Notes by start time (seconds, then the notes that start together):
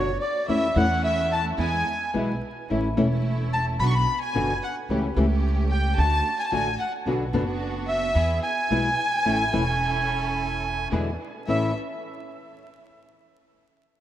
Already playing: F#1 B2 D3 B3 D4 F#4 C#5
0.21 D5
0.48 E2 E3 A3 C#4 E4 E5
0.75 E2 E3 A3 C#4 E4 F#5
1.04 E5
1.32 A5
1.58 E2 G#3 B3 E4 G#5
2.14 B1 B2 E3 G#3 B3 E4
2.70 A1 E3 A3 C#4 E4
2.97 E1 E3 A3 C#4 E4
3.53 A5
3.80 B1 B3 D4 F#4 B5
3.87 C#6
3.94 B5
4.22 G#5
4.35 F#1 B2 D3 B3 D4 F#4
4.63 F#5
4.89 C#2 C#3 E3 A3 C#4 G4
5.16 C#2 C#3 E3 A3 C#4 G4
5.71 G5
5.97 D2 A3 D4 F#4 A5
6.39 G#5
6.46 A5
6.51 A1 D3 A3 D4 F#4 G#5
6.79 F#5
7.06 B1 B2 D3 B3 D4 F#4
7.33 F#1 B2 D3 B3 D4 F#4
7.87 E5
8.15 E2 B3 E4 G#4
8.42 G#5
8.70 B1 B2 E3 G#3 B3 E4 G#4
9.25 A1 E3 A3 C#4 E4 A4
9.52 E1 E3 A3 C#4 E4 A4
10.92 E2 B2 D3 G#3 B3 D4 E4 G#4
11.47 A1 A2 E3 A3 C#4 E4 A4 E5